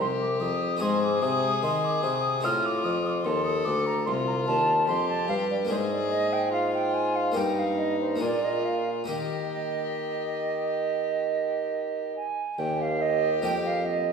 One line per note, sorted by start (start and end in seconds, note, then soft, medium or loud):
0.00 0.37 C2 soft
0.00 0.40 C2 medium
0.00 0.76 C4 soft
0.00 0.77 D#4 soft
0.00 0.77 G4 soft
0.00 0.81 G4 medium
0.00 0.07 C6 medium
0.21 0.42 D6 medium
0.40 0.77 F2 soft
0.40 0.81 F2 medium
0.40 0.83 D#6 medium
0.77 2.38 C4 soft
0.77 2.38 D#4 soft
0.77 2.39 G#4 soft
0.81 1.18 G#2 medium
0.81 1.22 G#2 medium
0.81 2.45 G#4 medium
0.81 1.02 C6 medium
1.03 1.24 D6 medium
1.22 1.59 C3 medium
1.22 1.51 C3 medium
1.22 1.62 D#6 medium
1.63 2.00 D#3 medium
1.63 2.03 D#3 medium
1.63 1.86 C6 medium
1.85 2.04 D6 medium
2.03 2.40 C3 soft
2.03 2.46 C3 medium
2.03 2.46 D#6 medium
2.41 2.84 A2 medium
2.41 5.65 C4 soft
2.41 5.66 D#4 soft
2.41 5.67 F4 soft
2.41 3.27 F4 medium
2.45 2.81 A2 soft
2.45 2.67 F6 medium
2.66 2.86 D6 medium
2.84 3.21 F2 soft
2.84 3.24 F2 medium
2.84 3.08 D#6 medium
3.06 3.25 D6 medium
3.24 3.62 D#2 soft
3.24 3.65 D#2 medium
3.24 4.09 A4 medium
3.24 3.44 C6 medium
3.45 3.66 D#6 medium
3.65 4.06 D2 medium
3.65 4.03 D2 soft
3.65 3.88 D6 medium
3.86 4.05 A#5 medium
4.05 4.47 C2 medium
4.05 4.44 C2 medium
4.05 4.87 F4 medium
4.05 4.11 C6 loud
4.27 4.33 A#5 medium
4.47 4.90 D#2 medium
4.47 4.85 D#2 medium
4.47 4.86 A5 medium
4.87 5.25 F2 medium
4.87 5.29 F2 medium
4.87 5.72 G4 medium
4.87 5.08 C6 medium
5.09 5.28 A5 medium
5.28 5.66 G2 soft
5.28 5.70 G2 medium
5.28 5.35 F5 medium
5.51 5.57 D5 medium
5.65 7.29 A#3 soft
5.65 7.30 D4 soft
5.65 7.31 F4 soft
5.69 7.31 G#2 soft
5.69 7.38 G#2 medium
5.69 6.52 G#4 medium
5.69 5.75 C5 medium
5.91 6.13 D5 medium
6.11 6.34 D#5 medium
6.33 6.52 G5 medium
6.52 7.38 F4 medium
6.52 6.73 F5 medium
6.74 6.95 G5 medium
6.94 7.17 G#5 medium
7.16 7.34 F5 medium
7.32 8.17 G2 soft
7.32 8.14 A#3 soft
7.32 8.17 D#4 soft
7.32 8.17 G4 soft
7.32 7.60 G5 medium
7.36 8.22 G2 medium
7.36 8.23 D#4 medium
7.59 7.80 F5 medium
7.78 7.99 D#5 medium
8.01 8.21 C5 medium
8.16 9.03 A#3 soft
8.16 9.04 D4 soft
8.16 9.05 G#4 soft
8.20 9.04 A#2 soft
8.20 9.08 A#2 medium
8.20 9.08 F4 medium
8.20 8.46 D5 medium
8.44 8.67 D#5 medium
8.65 8.89 F5 medium
9.04 12.53 A#3 soft
9.04 12.53 D#4 soft
9.04 12.54 G4 soft
9.08 12.22 D#3 soft
9.08 12.22 D#3 medium
9.08 12.12 G4 medium
9.08 12.15 D#5 medium
12.16 12.60 G#5 medium
12.58 13.39 D#2 soft
12.58 13.39 D#2 medium
12.58 14.13 G4 medium
12.58 12.83 G5 medium
12.81 13.03 F5 medium
13.01 13.43 D#5 medium
13.42 14.13 F2 medium
13.42 14.03 A#3 soft
13.42 14.03 D#4 soft
13.42 14.03 G4 soft
13.42 13.64 G5 medium
13.65 13.87 F5 medium
13.85 14.13 D#5 medium